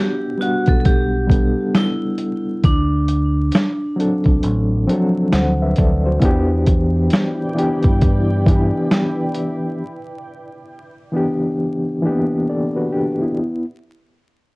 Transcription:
Already playing: B3 D4 F#4 G4
0.38 G3 B3 D4 F#4
0.42 F#5, closed hi-hat
0.66 B1 A4, kick, closed hi-hat
0.80 A4
0.85 G4, kick, closed hi-hat
1.27 G3 B3 D4, kick
1.31 A4, closed hi-hat
1.75 E4, snare, closed hi-hat
2.18 closed hi-hat
2.64 D2 D4, kick, closed hi-hat
3.08 closed hi-hat
3.52 snare, closed hi-hat
3.96 F#3 C4 D4, closed hi-hat
4.01 A4
4.24 C2, kick, closed hi-hat
4.43 A1, closed hi-hat
4.86 F3 C4 D4, closed hi-hat
4.91 F#3 A4
5.32 D2 C5 F#5, snare, closed hi-hat
5.62 B4 E5
5.76 D2 A4 D5, kick, closed hi-hat
6.06 F#4 C5
6.20 E2 E3 B3 D4 E4 B4 D5 G5, kick, closed hi-hat
6.25 G4
6.66 kick, closed hi-hat
7.10 snare, closed hi-hat
7.54 E3 B3 D4
7.58 G4, closed hi-hat
7.83 G2, kick, closed hi-hat
8.01 kick, closed hi-hat
8.46 E3 B3 D4, kick, closed hi-hat
8.51 G4
8.91 snare, closed hi-hat
9.34 closed hi-hat
11.12 E3 B3 D4
11.16 G4
12.02 E3 A#3 D4
12.07 B3 G4
12.49 A4 D5
12.76 F#4 B4
12.92 D4 G4
13.21 B3 E4

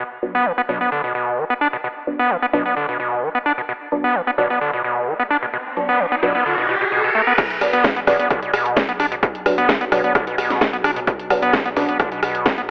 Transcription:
0.23 F#3 B3 D4
0.35 B3
0.46 E3
0.58 B3
0.69 B2 F#3 B3 D4
0.81 B3
0.92 D3
1.04 B2
1.15 B2
1.38 E3
1.50 B3
1.61 D4
1.73 B2
1.84 B2
2.07 F#3 B3 D4
2.19 B3
2.30 E3
2.42 B3
2.53 B2 F#3 B3 D4
2.66 B3
2.77 D3
2.89 B2
3.00 B2
3.23 E3
3.35 B3
3.46 D4
3.58 B2
3.69 B2, riser
3.92 F#3 B3 D4
4.04 B3
4.15 E3
4.27 B3
4.38 B2 F#3 B3 D4
4.50 B3
4.61 D3
4.73 B2
4.84 B2
5.07 E3
5.20 B3
5.31 D4
5.43 B2
5.54 B2
5.77 F#3 B3 D4
5.89 B3
6.00 E3
6.12 B3
6.23 B2 F#3 B3 D4
6.35 B3
6.46 D3
6.58 B2
6.69 B2
6.81 B2
6.92 B2
7.04 B2
7.15 A3
7.27 B3
7.38 B2 F#3, kick, cross-stick, closed hi-hat, crash
7.50 B1, closed hi-hat
7.61 F#3 B3 D4, cross-stick, open hi-hat
7.73 B1 B3, closed hi-hat
7.84 E3, kick, cross-stick, snare, closed hi-hat
7.96 B1 B3, closed hi-hat
8.07 B1 B2 F#3 B3 D4, cross-stick, snare, open hi-hat
8.19 B1 B3, closed hi-hat
8.30 D3, kick, cross-stick, closed hi-hat
8.42 B1 B2, closed hi-hat
8.53 B2, cross-stick, open hi-hat
8.66 B1, closed hi-hat
8.77 E3, kick, cross-stick, snare, closed hi-hat
8.89 B1 B3, closed hi-hat
9.00 B1 D4, cross-stick, open hi-hat
9.12 B1 B2, closed hi-hat
9.23 B2, kick, cross-stick, closed hi-hat
9.35 B1, closed hi-hat
9.46 F#3 B3 D4, cross-stick, open hi-hat
9.58 B1 B3, closed hi-hat
9.69 E3, kick, cross-stick, snare, closed hi-hat
9.81 B1 B3, closed hi-hat
9.92 B1 B2 F#3 B3 D4, cross-stick, open hi-hat
10.04 B1 B3, closed hi-hat
10.15 D3, kick, cross-stick, closed hi-hat
10.27 B1 B2, closed hi-hat
10.38 B2, cross-stick, open hi-hat
10.50 B1, snare, closed hi-hat
10.61 E3, kick, cross-stick, snare, closed hi-hat
10.73 B1 B3, closed hi-hat
10.84 B1 D4, cross-stick, open hi-hat
10.96 B1 B2, closed hi-hat
11.07 B2, kick, cross-stick, closed hi-hat
11.19 B1, closed hi-hat
11.30 F#3 B3 D4, cross-stick, open hi-hat
11.42 B1 B3, closed hi-hat
11.53 E3, kick, cross-stick, snare, closed hi-hat
11.66 B1 B3, closed hi-hat
11.77 B1 B2 F#3 B3 D4, cross-stick, snare, open hi-hat
11.89 B1 B3, closed hi-hat
12.00 D3, kick, cross-stick, closed hi-hat
12.12 B1 B2, closed hi-hat
12.23 B2, cross-stick, open hi-hat
12.35 B1, closed hi-hat
12.46 E3, kick, cross-stick, snare, closed hi-hat
12.58 B1 B3, closed hi-hat

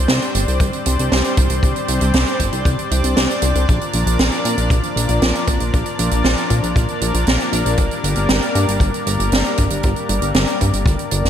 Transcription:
Already playing: G3 C4 D4 C5 D5
0.08 C2, snare, closed hi-hat
0.22 closed hi-hat
0.35 G1, closed hi-hat
0.48 C2, closed hi-hat
0.60 C2, kick, closed hi-hat
0.73 closed hi-hat
0.86 C2, closed hi-hat
0.99 C2, closed hi-hat
1.12 C2, snare, closed hi-hat
1.24 closed hi-hat
1.37 C2, kick, closed hi-hat
1.50 C2, closed hi-hat
1.63 C2, kick, closed hi-hat
1.76 closed hi-hat
1.88 C2, closed hi-hat
2.01 C2, closed hi-hat
2.13 C2, snare, closed hi-hat
2.27 closed hi-hat
2.40 G1, kick, closed hi-hat
2.53 C2, closed hi-hat
2.65 C2, kick, closed hi-hat
2.79 closed hi-hat
2.91 C2, closed hi-hat
3.04 C2, closed hi-hat
3.17 C2, snare, closed hi-hat
3.31 closed hi-hat
3.42 C2, closed hi-hat
3.55 C2, closed hi-hat
3.68 A#1 F3 A#3 A#4, kick, closed hi-hat
3.81 closed hi-hat
3.93 A#1, closed hi-hat
4.06 A#1, closed hi-hat
4.19 A#1, snare, closed hi-hat
4.32 closed hi-hat
4.45 A#2, closed hi-hat
4.58 A#1, closed hi-hat
4.70 A#1, kick, closed hi-hat
4.83 closed hi-hat
4.96 A#1, closed hi-hat
5.09 A#1, closed hi-hat
5.22 A#1, snare, closed hi-hat
5.35 closed hi-hat
5.47 A#1, kick, closed hi-hat
5.60 A#1, closed hi-hat
5.74 A#1, kick, closed hi-hat
5.86 closed hi-hat
5.99 A#1, closed hi-hat
6.11 A#1, closed hi-hat
6.24 A#1, snare, closed hi-hat
6.38 closed hi-hat
6.50 A#2, kick, closed hi-hat
6.63 A#1, closed hi-hat
6.76 A#1, kick, closed hi-hat
6.88 closed hi-hat
7.01 A#1, closed hi-hat
7.14 A#1, closed hi-hat
7.27 A#1, snare, closed hi-hat
7.40 closed hi-hat
7.53 A#1, closed hi-hat
7.65 A#1, closed hi-hat
7.77 G1 G3, kick, closed hi-hat
7.91 closed hi-hat
8.04 G1, closed hi-hat
8.16 G1, closed hi-hat
8.29 G1, snare, closed hi-hat
8.42 closed hi-hat
8.55 G2, closed hi-hat
8.68 G1, closed hi-hat
8.80 G1, kick, closed hi-hat
8.94 closed hi-hat
9.07 G1, closed hi-hat
9.19 G1, closed hi-hat
9.32 G1, snare, closed hi-hat
9.44 closed hi-hat
9.57 G1, kick, closed hi-hat
9.70 G1, closed hi-hat
9.83 G1, kick, closed hi-hat
9.96 closed hi-hat
10.09 G1, closed hi-hat
10.22 G1, closed hi-hat
10.34 G1, snare, closed hi-hat
10.47 closed hi-hat
10.61 G2, kick, closed hi-hat
10.73 G1, closed hi-hat
10.86 G1, kick, closed hi-hat
10.99 closed hi-hat
11.11 G1, closed hi-hat
11.25 G1, snare, closed hi-hat

